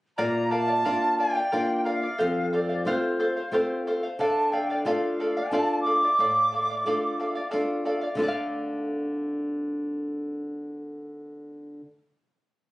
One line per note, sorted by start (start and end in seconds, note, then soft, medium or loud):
0.17 0.83 A#2 medium
0.17 0.50 A#4 medium
0.17 0.50 D5 medium
0.17 0.51 F5 medium
0.17 0.52 A#5 medium
0.50 0.68 A#4 soft
0.50 0.68 D5 soft
0.50 0.67 F5 soft
0.50 1.18 A5 medium
0.68 0.84 D5 soft
0.68 0.84 F5 soft
0.85 1.39 A#3 soft
0.85 1.39 D4 soft
0.85 1.39 F4 soft
0.85 1.17 A#4 medium
0.85 1.18 D5 medium
0.85 1.19 F5 medium
1.18 1.35 A#4 soft
1.18 1.35 D5 soft
1.18 1.34 F5 medium
1.18 1.81 G5 medium
1.35 1.51 D5 soft
1.35 1.52 F5 soft
1.52 2.06 A#3 soft
1.52 2.06 D4 soft
1.52 2.06 F4 soft
1.52 1.84 A#4 medium
1.52 1.85 D5 medium
1.52 1.85 F5 medium
1.84 2.02 A#4 soft
1.84 2.02 D5 soft
1.84 2.48 F5 medium
1.84 2.00 F5 medium
2.01 2.18 D5 soft
2.01 2.18 F5 soft
2.18 2.84 F2 medium
2.18 2.51 A4 medium
2.18 2.52 C5 medium
2.18 2.52 F5 medium
2.53 2.69 A4 soft
2.53 2.69 C5 soft
2.53 2.84 D5 medium
2.53 2.68 F5 medium
2.69 2.86 C5 soft
2.69 2.86 F5 soft
2.85 3.39 A3 soft
2.85 3.39 C4 soft
2.85 3.39 F4 soft
2.85 3.18 A4 medium
2.85 3.82 C5 medium
2.85 3.19 C5 medium
2.85 3.19 F5 medium
3.20 3.36 A4 medium
3.20 3.36 C5 medium
3.20 3.35 F5 medium
3.37 3.53 C5 soft
3.37 3.53 F5 soft
3.52 4.05 A3 soft
3.52 4.06 C4 soft
3.52 4.06 F4 soft
3.52 3.86 A4 medium
3.52 3.86 C5 medium
3.52 3.87 F5 medium
3.87 4.03 A4 medium
3.87 4.03 C5 medium
3.87 4.02 F5 medium
4.03 4.20 C5 soft
4.03 4.19 F5 soft
4.19 4.84 D3 medium
4.19 4.51 A4 medium
4.19 4.52 D5 medium
4.19 4.52 F5 medium
4.19 4.52 A5 medium
4.51 4.69 A4 soft
4.51 4.70 D5 soft
4.51 4.69 F5 medium
4.51 4.82 G5 medium
4.70 4.85 D5 soft
4.70 4.86 F5 soft
4.83 5.39 A3 soft
4.83 5.39 D4 soft
4.83 5.39 F4 soft
4.83 5.19 A4 medium
4.83 5.19 D5 medium
4.83 5.51 F5 medium
4.83 4.87 G5 medium
4.87 5.20 F5 medium
5.20 5.36 A4 soft
5.20 5.37 D5 soft
5.20 5.36 F5 medium
5.37 5.52 D5 soft
5.37 5.53 F5 medium
5.49 6.05 A3 soft
5.49 6.06 D4 soft
5.49 6.06 F4 soft
5.49 5.84 A4 medium
5.49 5.80 A5 medium
5.53 5.85 D5 medium
5.53 5.86 F5 medium
5.81 7.46 D6 medium
5.86 6.02 A4 soft
5.86 6.03 D5 soft
5.86 6.01 F5 medium
6.02 6.19 D5 soft
6.02 6.19 F5 soft
6.19 6.84 A2 medium
6.19 6.51 A4 medium
6.19 6.52 D5 medium
6.19 6.53 F5 medium
6.52 6.69 A4 soft
6.52 6.70 D5 medium
6.52 6.69 F5 medium
6.70 6.86 D5 soft
6.70 6.86 F5 soft
6.86 7.39 A3 soft
6.86 7.40 D4 soft
6.86 7.40 F4 soft
6.86 7.18 A4 medium
6.86 7.19 D5 medium
6.86 7.19 F5 medium
7.20 7.36 A4 medium
7.20 7.35 D5 medium
7.20 7.34 F5 medium
7.35 7.50 D5 soft
7.35 7.50 F5 medium
7.51 8.06 A3 soft
7.51 8.07 D4 soft
7.51 8.07 F4 soft
7.51 7.84 A4 medium
7.51 7.85 D5 medium
7.51 7.85 F5 medium
7.85 8.03 A4 medium
7.85 8.02 D5 soft
7.85 8.00 F5 medium
8.01 8.17 D5 soft
8.01 8.19 F5 soft
8.15 11.81 D3 soft
8.15 11.82 A3 soft
8.15 8.24 F4 soft
8.15 11.86 A4 medium
8.20 8.22 D5 soft
8.20 11.93 D5 medium
8.20 11.87 A5 soft
8.25 11.90 D5 soft
8.25 11.98 F5 medium